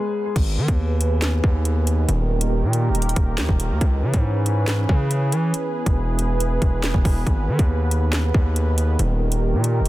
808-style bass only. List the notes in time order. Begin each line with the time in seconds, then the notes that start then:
0.36 G#1
0.57 D#3
0.68 D#2
1.44 D#2
2.08 D#1
2.62 A#2
2.89 D#1
3.16 D#1
3.38 D#2
3.49 D#1
3.70 D#2
3.81 C#2
4.03 C#3
4.14 G#2
4.89 C#3
5.32 E3
5.86 E1
6.62 E1
6.94 E1
7.05 E1
7.27 G#1
7.48 D#3
7.59 D#2
8.34 D#2
8.99 D#1
9.53 A#2
9.80 D#1